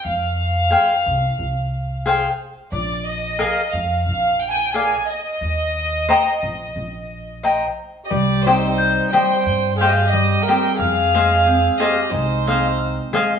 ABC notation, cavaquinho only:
X:1
M:4/4
L:1/8
Q:1/4=90
K:Eb
V:1 name="Cavaquinho"
z2 [Acfg] z3 [Acfg] z | z2 [ABef] z3 [ABdf] z | z2 [cegb] z3 [cegb] z | [K:Cm] z [Gceg] z [Gceg] z [Gceg] z [Gceg] |
z [Acef] z [Acef] z [Acef] z [Acef] |]